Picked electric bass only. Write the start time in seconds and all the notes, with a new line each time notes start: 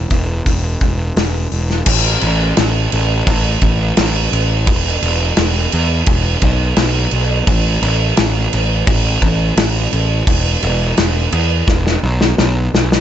0.11 E1
0.46 E1
0.81 E1
1.16 E1
1.52 E1
1.87 A1
2.22 A1
2.58 A1
2.93 A1
3.27 A1
3.62 A1
3.98 A1
4.32 A1
4.68 E1
5.02 E1
5.38 E1
5.73 E2
6.07 E1
6.43 B1
6.77 B1
7.12 B1
7.47 A1
7.82 A1
8.18 A1
8.53 A1
8.87 A1
9.22 A1
9.57 A1
9.93 A1
10.27 E1
10.63 E1
10.98 E1
11.33 E2
11.68 E1
12.03 B1
12.38 B1
12.74 B1